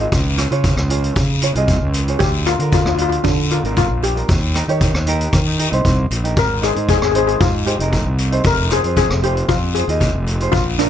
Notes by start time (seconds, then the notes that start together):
Already playing: F4
0.00 D#4 G#4 D#5, closed hi-hat
0.12 C#2, kick, closed hi-hat, long guiro
0.37 F4 G#4 C#5, cross-stick, closed hi-hat, short guiro
0.51 C#3 F4 G#4 C#5, closed hi-hat
0.64 kick, closed hi-hat, short guiro
0.77 C#2, cross-stick
0.89 F4 G#4 C#5, closed hi-hat
1.04 closed hi-hat
1.16 C#3, kick, closed hi-hat, long guiro
1.42 F4 G#4 C#5, closed hi-hat
1.55 C2 F4 G#4 D#5, closed hi-hat
1.68 kick, closed hi-hat, short guiro
1.81 C#2
1.94 closed hi-hat, short guiro
2.07 F4 G#4 C#5, closed hi-hat
2.19 D2 G4, kick, closed hi-hat, long guiro
2.45 D4 F4 A#4, cross-stick, closed hi-hat, short guiro
2.59 D3 D4 F4 A#4, closed hi-hat
2.72 F4, kick, closed hi-hat, short guiro
2.81 F4
2.86 D2 F4, cross-stick
2.95 D4 F4, closed hi-hat
3.00 F4 G4
3.09 F4, closed hi-hat
3.24 D3 D4, kick, closed hi-hat, long guiro
3.50 D4 F4 A#4, closed hi-hat
3.64 G#1 D4 F4 A#4, closed hi-hat
3.77 F4, kick, closed hi-hat, short guiro
3.90 A#1
4.03 G4, closed hi-hat, short guiro
4.15 D4 F4 A#4, closed hi-hat
4.29 D#2, kick, closed hi-hat, long guiro
4.54 D#4 G4 A#4, cross-stick, closed hi-hat, short guiro
4.68 D#3 D#4 G4 C#5, closed hi-hat
4.81 kick, closed hi-hat, short guiro
4.94 D#2, cross-stick
5.06 D#4 G4 A#4, closed hi-hat
5.21 closed hi-hat
5.33 D#3, kick, cross-stick, closed hi-hat, long guiro
5.58 D#4 G4 A#4, closed hi-hat
5.72 C2 D#4 G4 C5, closed hi-hat
5.85 C2, kick, closed hi-hat, short guiro
6.11 A#1, closed hi-hat, short guiro
6.23 D#4 G4 A#4, closed hi-hat
6.37 G#1 A#4, kick, closed hi-hat, long guiro
6.61 D#4 G#4 C5, cross-stick, closed hi-hat, short guiro
6.74 G#2 D#4 G#4 C5, closed hi-hat
6.88 G#4, kick, closed hi-hat, short guiro
6.98 G#4
7.02 G#1 G#4, cross-stick
7.12 D#4 G#4 C5, closed hi-hat
7.18 G#4
7.27 G#4, closed hi-hat
7.41 G#2 F4, kick, closed hi-hat, long guiro
7.65 D#4 G4 G#4 C5, closed hi-hat
7.79 F1 D#4 G#4 A#4, closed hi-hat
7.93 kick, closed hi-hat, short guiro
8.05 C2
8.18 closed hi-hat, short guiro
8.31 D#4 G#4 C5, closed hi-hat
8.44 F1 A#4, kick, closed hi-hat, long guiro
8.70 F4 G#4 C5, cross-stick, closed hi-hat, short guiro
8.83 F2 F4 G#4 C5, closed hi-hat
8.96 G#4, kick, closed hi-hat, short guiro
9.09 F1, cross-stick
9.22 F4 G4 G#4 C5, closed hi-hat
9.37 closed hi-hat
9.49 F2 F4, kick, closed hi-hat, long guiro
9.75 F4 G#4 C5, closed hi-hat
9.88 D#2 F4 G#4 D#5, closed hi-hat
10.00 kick, closed hi-hat, short guiro
10.14 F1
10.27 closed hi-hat, short guiro
10.40 F4 G#4 C5, closed hi-hat
10.52 A#1 F4, kick, closed hi-hat, long guiro
10.78 D4 F4 A#4, cross-stick, closed hi-hat, short guiro